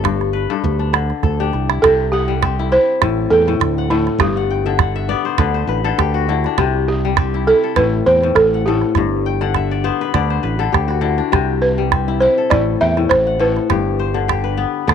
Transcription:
Already playing: G1 A3 A4 B4 D5 E5
0.04 G2, calabash thump, calabash click
0.21 calabash click
0.33 B4
0.50 G2 A4
0.64 D2, calabash thump
0.79 D4
0.93 D3, calabash click
1.10 calabash click
1.23 D2 A4, calabash thump, calabash click
1.40 D4 G4
1.53 C2, calabash click
1.69 E4, calabash click
1.82 C2 C3 C4 A4, calabash thump, calabash click
2.12 G4 F#5
2.28 G3
2.42 C4, calabash thump, calabash click
2.59 E4
2.72 E4 C5
3.02 A1 A2, calabash thump, calabash click
3.30 E2 A4 G5
3.48 A2, calabash click
3.60 D2, calabash thump, calabash click
3.78 F#5
3.90 A2 E4 A4
4.07 calabash click
4.18 G1 G2 G4, calabash thump, calabash click
4.37 F#5
4.50 G5
4.66 D3 E5
4.79 F#5, calabash thump, calabash click
4.96 E5
5.09 B3 D5
5.25 C5
5.38 D2 D3 B4, calabash thump, calabash click
5.54 C5
5.67 A1 B4
5.84 D3 A4, calabash click
5.98 D2 G4, calabash thump, calabash click
6.14 F#4
6.29 D3 E4
6.44 D4, calabash click
6.58 C2 C3 C4, calabash thump, calabash click
6.88 G4
7.05 G3
7.17 C4, calabash thump, calabash click
7.34 E4
7.47 E4 A4
7.64 A4
7.76 A1 A2 B4, calabash thump, calabash click
8.06 E2 C5 G5
8.22 A2, calabash click
8.35 A1 A4, calabash thump, calabash click
8.54 F#5
8.66 A2 G4 A4
8.82 calabash click
8.95 G1 G2, calabash thump, calabash click
9.26 G5
9.41 D3 F#5, calabash click
9.54 E5, calabash thump, calabash click
9.71 D5
9.84 B3 C5
10.01 B4
10.14 D2 D3 D5, calabash thump, calabash click
10.30 C5, calabash click
10.43 A1 B4, calabash click
10.59 D3 A4
10.72 D2 G4, calabash thump, calabash click
10.88 F#4, calabash click
11.01 D3 E4
11.18 D4
11.32 C2 C3 C4, calabash thump, calabash click
11.62 B4
11.78 G3
11.92 C4, calabash thump, calabash click
12.08 E4
12.20 E4 C5
12.38 A4
12.50 A1 A2 D5, calabash thump, calabash click
12.81 E2 E5 G5
12.97 A2, calabash click
13.09 A1 C5, calabash thump, calabash click
13.27 F#5
13.39 A2 A4 B4
13.57 calabash click
13.70 G1 G2 G4, calabash thump, calabash click
13.99 C5
14.14 D3
14.28 G4, calabash thump, calabash click
14.44 B4
14.57 B3
14.87 D2 D3, calabash thump, calabash click

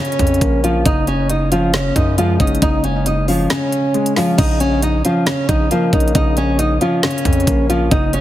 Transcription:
Already playing: C#3 A#3 C#4
0.00 C#5
0.05 closed hi-hat
0.12 closed hi-hat
0.19 F2, kick, closed hi-hat
0.27 closed hi-hat
0.34 closed hi-hat
0.41 A#1 A#3, kick, closed hi-hat
0.64 F3 C#4 F4, closed hi-hat
0.85 F#1 C#3 D#4 D#5, kick, closed hi-hat
1.07 C#4 C#5, closed hi-hat
1.30 D#4 D#5, closed hi-hat
1.52 F3 C#4 F4, closed hi-hat
1.73 C#3 C#4 C#5, snare, closed hi-hat
1.96 F#2 D#4 D#5, kick, closed hi-hat
2.18 F3 G#3 F4, closed hi-hat
2.40 F#1 C#4 D#4 D#5, kick, closed hi-hat
2.47 closed hi-hat
2.55 closed hi-hat
2.62 F#1 C#3 D#4 D#5, kick, closed hi-hat
2.84 C#4 C#5, closed hi-hat
3.06 D#4 D#5, closed hi-hat
3.28 F3 C#4 F4, open hi-hat
3.50 C#3 C#4 C#5, snare, closed hi-hat
3.72 closed hi-hat
3.94 G#3, closed hi-hat
4.06 closed hi-hat
4.16 F3 C#4 F4, snare, open hi-hat
4.38 A#1 C#3 D#4 D#5, kick, closed hi-hat, crash
4.60 C#4 C#5, closed hi-hat
4.82 D#4 D#5, closed hi-hat
5.05 F3 C#4 F4, closed hi-hat
5.26 C#3 C#4 C#5, snare, closed hi-hat
5.49 A#1 D#4 D#5, kick, closed hi-hat
5.71 F3 A#3 F4, closed hi-hat
5.93 A#1 C#4 D#4 D#5, kick, closed hi-hat
6.00 closed hi-hat
6.08 closed hi-hat
6.15 A#1 C#3 D#4 D#5, kick, closed hi-hat
6.37 C#4 C#5, closed hi-hat
6.59 D#4 D#5, closed hi-hat
6.81 F3 C#4 F4, closed hi-hat
7.03 C#3 C#4 C#5, snare, closed hi-hat
7.11 closed hi-hat
7.18 closed hi-hat
7.25 F2, kick, closed hi-hat
7.33 closed hi-hat
7.40 closed hi-hat
7.47 A#1 A#3, kick, closed hi-hat
7.69 F3 C#4 F4, closed hi-hat
7.91 F#1 C#3 D#4 D#5, kick, closed hi-hat
8.13 C#4 C#5, closed hi-hat

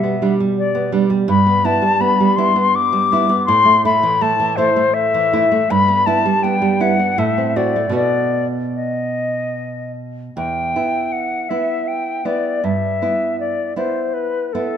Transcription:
Already playing: B2 G3 E5
0.04 B3
0.22 G3 D4
0.40 G3
0.58 D5
0.75 B3
0.92 G3 D4
1.10 G3
1.28 G2 B5
1.46 B3
1.64 B3 E4 A5
1.82 G3
2.00 B3 B5
2.20 G3
2.36 B3 E4 C6
2.56 B3
2.75 D6
2.93 G3
3.12 B3 E4
3.29 B3
3.46 A2 C6
3.65 A3
3.85 A3 E4 B5
4.03 E3
4.21 A3 A5
4.40 E3
4.57 A3 E4 C5
4.76 A3
4.94 E5
5.14 E3
5.33 A3 E4
5.52 A3
5.70 G2 B5
5.88 B3
6.06 B3 E4 A5
6.25 G3
6.43 B3 G5
6.62 G3
6.80 B3 E4 F#5
6.99 B3
7.18 A2 E5
7.38 C4
7.56 C4 F#4 D5
7.76 A3
7.89 B2 B3 F#4
7.95 D5
8.75 D#5
10.37 E2 G5
10.76 B3 E4
11.12 F#5
11.49 B3 E4 E5
11.88 G5
12.25 B3 E4 D5
12.64 G2 E5
13.02 B3 E4
13.40 D5
13.76 B3 E4 C5
14.14 B4
14.53 B3 E4 A4

